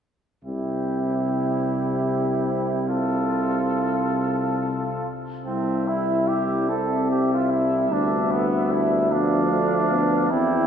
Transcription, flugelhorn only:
0, 0, Header, 1, 2, 480
1, 0, Start_track
1, 0, Key_signature, 0, "major"
1, 0, Tempo, 814111
1, 266, Time_signature, 6, 3, 24, 8
1, 2186, Tempo, 878477
1, 3146, Tempo, 821918
1, 3626, Tempo, 806452
1, 6234, End_track
2, 0, Start_track
2, 0, Title_t, "Flugelhorn"
2, 0, Program_c, 0, 56
2, 264, Note_on_c, 0, 64, 31
2, 1680, Note_off_c, 0, 64, 0
2, 1700, Note_on_c, 0, 65, 38
2, 2936, Note_off_c, 0, 65, 0
2, 3142, Note_on_c, 0, 60, 47
2, 3388, Note_on_c, 0, 64, 47
2, 3396, Note_off_c, 0, 60, 0
2, 3621, Note_on_c, 0, 67, 43
2, 3630, Note_off_c, 0, 64, 0
2, 3870, Note_on_c, 0, 69, 50
2, 3878, Note_off_c, 0, 67, 0
2, 4108, Note_off_c, 0, 69, 0
2, 4116, Note_on_c, 0, 67, 47
2, 4229, Note_off_c, 0, 67, 0
2, 4247, Note_on_c, 0, 65, 40
2, 4352, Note_on_c, 0, 64, 45
2, 4361, Note_off_c, 0, 65, 0
2, 4600, Note_on_c, 0, 62, 43
2, 4609, Note_off_c, 0, 64, 0
2, 4832, Note_on_c, 0, 59, 45
2, 4841, Note_off_c, 0, 62, 0
2, 5073, Note_on_c, 0, 64, 40
2, 5082, Note_off_c, 0, 59, 0
2, 5314, Note_on_c, 0, 62, 50
2, 5323, Note_off_c, 0, 64, 0
2, 6020, Note_on_c, 0, 64, 55
2, 6028, Note_off_c, 0, 62, 0
2, 6234, Note_off_c, 0, 64, 0
2, 6234, End_track
0, 0, End_of_file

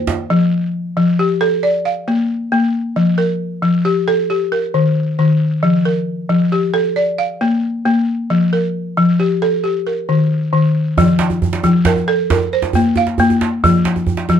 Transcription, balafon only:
0, 0, Header, 1, 2, 480
1, 0, Start_track
1, 0, Tempo, 444115
1, 330, Time_signature, 12, 3, 24, 8
1, 15561, End_track
2, 0, Start_track
2, 0, Title_t, "Balafon"
2, 0, Program_c, 0, 12
2, 0, Note_on_c, 0, 72, 63
2, 326, Note_on_c, 0, 53, 87
2, 566, Note_off_c, 0, 72, 0
2, 807, Note_off_c, 0, 53, 0
2, 1047, Note_on_c, 0, 53, 76
2, 1290, Note_on_c, 0, 67, 63
2, 1522, Note_on_c, 0, 69, 75
2, 1527, Note_off_c, 0, 53, 0
2, 1762, Note_on_c, 0, 74, 63
2, 1764, Note_off_c, 0, 69, 0
2, 2004, Note_on_c, 0, 77, 57
2, 2008, Note_off_c, 0, 67, 0
2, 2245, Note_on_c, 0, 58, 71
2, 2484, Note_off_c, 0, 74, 0
2, 2710, Note_off_c, 0, 58, 0
2, 2723, Note_on_c, 0, 58, 74
2, 2725, Note_off_c, 0, 77, 0
2, 3202, Note_on_c, 0, 53, 73
2, 3205, Note_off_c, 0, 58, 0
2, 3435, Note_on_c, 0, 70, 62
2, 3685, Note_off_c, 0, 53, 0
2, 3917, Note_on_c, 0, 53, 70
2, 4161, Note_on_c, 0, 67, 64
2, 4162, Note_off_c, 0, 70, 0
2, 4403, Note_off_c, 0, 53, 0
2, 4405, Note_on_c, 0, 69, 75
2, 4635, Note_off_c, 0, 67, 0
2, 4647, Note_off_c, 0, 69, 0
2, 4648, Note_on_c, 0, 67, 56
2, 4885, Note_on_c, 0, 70, 57
2, 5125, Note_on_c, 0, 51, 65
2, 5370, Note_off_c, 0, 67, 0
2, 5594, Note_off_c, 0, 51, 0
2, 5607, Note_on_c, 0, 51, 71
2, 5608, Note_off_c, 0, 70, 0
2, 6082, Note_on_c, 0, 53, 79
2, 6090, Note_off_c, 0, 51, 0
2, 6326, Note_on_c, 0, 70, 57
2, 6568, Note_off_c, 0, 53, 0
2, 6803, Note_on_c, 0, 53, 76
2, 7048, Note_on_c, 0, 67, 59
2, 7051, Note_off_c, 0, 70, 0
2, 7280, Note_on_c, 0, 69, 69
2, 7289, Note_off_c, 0, 53, 0
2, 7524, Note_on_c, 0, 74, 55
2, 7528, Note_off_c, 0, 69, 0
2, 7765, Note_on_c, 0, 77, 58
2, 7773, Note_off_c, 0, 67, 0
2, 8009, Note_on_c, 0, 58, 72
2, 8251, Note_off_c, 0, 74, 0
2, 8477, Note_off_c, 0, 58, 0
2, 8490, Note_on_c, 0, 58, 79
2, 8492, Note_off_c, 0, 77, 0
2, 8973, Note_on_c, 0, 53, 81
2, 8975, Note_off_c, 0, 58, 0
2, 9217, Note_on_c, 0, 70, 59
2, 9457, Note_off_c, 0, 53, 0
2, 9697, Note_on_c, 0, 53, 80
2, 9939, Note_off_c, 0, 70, 0
2, 9940, Note_on_c, 0, 67, 62
2, 10179, Note_off_c, 0, 53, 0
2, 10182, Note_on_c, 0, 69, 71
2, 10403, Note_off_c, 0, 67, 0
2, 10416, Note_on_c, 0, 67, 53
2, 10422, Note_off_c, 0, 69, 0
2, 10663, Note_on_c, 0, 70, 51
2, 10903, Note_on_c, 0, 51, 67
2, 11139, Note_off_c, 0, 67, 0
2, 11368, Note_off_c, 0, 51, 0
2, 11381, Note_on_c, 0, 51, 71
2, 11382, Note_off_c, 0, 70, 0
2, 11861, Note_off_c, 0, 51, 0
2, 11867, Note_on_c, 0, 53, 88
2, 12344, Note_off_c, 0, 53, 0
2, 12579, Note_on_c, 0, 53, 79
2, 12822, Note_on_c, 0, 70, 64
2, 13055, Note_on_c, 0, 69, 74
2, 13059, Note_off_c, 0, 53, 0
2, 13292, Note_off_c, 0, 70, 0
2, 13297, Note_off_c, 0, 69, 0
2, 13305, Note_on_c, 0, 70, 67
2, 13543, Note_on_c, 0, 72, 59
2, 13784, Note_on_c, 0, 58, 77
2, 14021, Note_off_c, 0, 70, 0
2, 14021, Note_on_c, 0, 77, 69
2, 14249, Note_off_c, 0, 58, 0
2, 14260, Note_off_c, 0, 72, 0
2, 14262, Note_on_c, 0, 58, 81
2, 14738, Note_off_c, 0, 58, 0
2, 14738, Note_off_c, 0, 77, 0
2, 14740, Note_on_c, 0, 53, 88
2, 15216, Note_off_c, 0, 53, 0
2, 15453, Note_on_c, 0, 53, 81
2, 15561, Note_off_c, 0, 53, 0
2, 15561, End_track
0, 0, End_of_file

